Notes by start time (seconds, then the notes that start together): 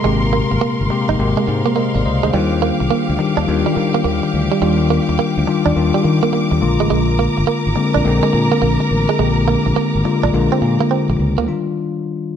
Already playing: A#2 C3 G#3 A#3 G4 A#4 F5 C6
0.04 G#1 C3 G#3 A#3 G4
0.33 A#3
0.51 G#1, muted clean electric guitar stroke
0.61 A#3
0.81 G1
0.90 C3 G#3 A#3 G4, muted clean electric guitar stroke
1.09 G#1 D#4
1.19 G#1 C3 G#3 A#3 G4
1.37 G#3
1.47 G#2 G#4 C5, muted clean electric guitar stroke
1.66 A#3
1.76 A#3 C5 D#5
1.95 G#1 D5 F5, muted clean electric guitar stroke
2.05 C#2 C5 D#5
2.23 D2 G#3 G#4 C5
2.33 D#2 D#3 G3 D4 F4 G4 D6
2.62 A#3
2.80 C2, muted clean electric guitar stroke
2.91 A#3
3.09 D2
3.19 D#3 G3 D4 G4, muted clean electric guitar stroke
3.37 D#2 D4
3.47 D#2 D#3 G3 D4 F4
3.66 G3
3.76 D#3, muted clean electric guitar stroke
3.94 A#3
4.04 D#2 A#3
4.23 muted clean electric guitar stroke
4.34 D2
4.52 G3
4.61 D#2 D#3 G3 D4 F4
4.90 A#3
5.09 D#2, muted clean electric guitar stroke
5.19 A#3, muted fingered electric bass stroke
5.38 D2
5.47 D#3 G3 D4 F4, muted clean electric guitar stroke
5.66 D#2 D4
5.76 D#2 D#3 G3 D4 F4
5.94 G3
6.04 D#3, muted clean electric guitar stroke
6.23 A#3
6.33 A#3
6.51 D#2, muted clean electric guitar stroke
6.61 A#1 D3 G#3 A#3 F4 A#4 A#5
6.80 A1 G#3
6.90 A#1 G#3
7.19 A#3
7.37 G1, muted clean electric guitar stroke
7.47 A#3, muted fingered electric bass stroke
7.67 G#1
7.76 D3 G#3 A#3 C4, muted clean electric guitar stroke
7.94 A#1 D4
8.04 A#1 D3 G#3 A#3 C4
8.23 G#3
8.33 A#2, muted clean electric guitar stroke
8.52 A#3
8.62 A#1 A#3
8.80 muted clean electric guitar stroke
8.91 A1
9.09 G#3
9.18 A#1 D3 G#3 A#3 G4
9.48 A#3
9.66 A#1, muted clean electric guitar stroke
9.76 A#3
9.95 G#1
10.04 D3 G#3 A#3 F4, muted clean electric guitar stroke
10.23 A#1 D4
10.33 A#1 D3 G#3 A#3 F4
10.52 C4
10.62 A#2, muted clean electric guitar stroke
10.81 A#3
10.91 C4
11.09 A#1, muted clean electric guitar stroke
11.19 C#2
11.38 D2 A#3
11.46 D#3 G3 D4 F4